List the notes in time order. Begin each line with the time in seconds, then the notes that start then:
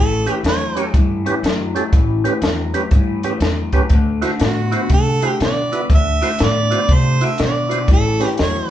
Already playing: A1 A2 E3 A4
0.26 A2 E3 C#4 G4 B4, closed hi-hat
0.44 E2 A2 F#3, snare, closed hi-hat
0.48 C#5
0.75 A2 F#3 C#4 G4 C#5, closed hi-hat
0.94 G2 A2 E3, kick, closed hi-hat
1.25 A2 E3 C#4 G4 B4, closed hi-hat
1.43 F#2 A2 F#3, snare, closed hi-hat
1.75 A2 F#3 C#4 G4 A4, closed hi-hat
1.93 A1 A2 E3, kick, closed hi-hat
2.24 A2 E3 C#4 G4 B4, closed hi-hat
2.42 E2 A2 F#3, snare, closed hi-hat
2.74 A2 F#3 C#4 G4 B4, closed hi-hat
2.91 G2 A2 E3, kick, closed hi-hat
3.23 A2 E3 C#4 G4 B4, closed hi-hat
3.40 E2 A2 F#3, snare, closed hi-hat
3.73 A2 F#3 C#4 G4 B4, kick, closed hi-hat
3.89 D2 D3 A3, kick, closed hi-hat
4.22 D3 A3 E4 F#4 C5, snare, closed hi-hat
4.40 A2 D3 B3, snare, closed hi-hat
4.45 F#4
4.71 D3 B3 E4 F#4 C5, closed hi-hat
4.90 C3 D3 A3, kick, closed hi-hat
4.94 A4
5.20 D3 A3 E4 F#4 C5, closed hi-hat
5.40 B2 D3 B3 D5, snare, closed hi-hat
5.71 D3 B3 E4 F#4 B4, closed hi-hat
5.89 D2 D3 A3, kick, closed hi-hat
5.95 E5
6.21 D3 A3 E4 F#4 C5, snare, closed hi-hat
6.39 A2 D3 B3, snare, closed hi-hat
6.43 D5
6.70 D3 B3 E4 F#4 C5, closed hi-hat
6.89 C3 D3 A3, kick, closed hi-hat
6.94 C5
7.21 D3 A3 E4 F#4 C5, closed hi-hat
7.26 E5
7.38 B2 D3 B3, snare, closed hi-hat
7.44 D5
7.69 D3 B3 E4 F#4 C5, closed hi-hat
7.88 A1 A2 E3, kick, closed hi-hat
7.92 A4
8.20 A2 E3 C#4 G4 B4, snare, closed hi-hat
8.38 E2 A2 F#3, snare, closed hi-hat
8.42 C#5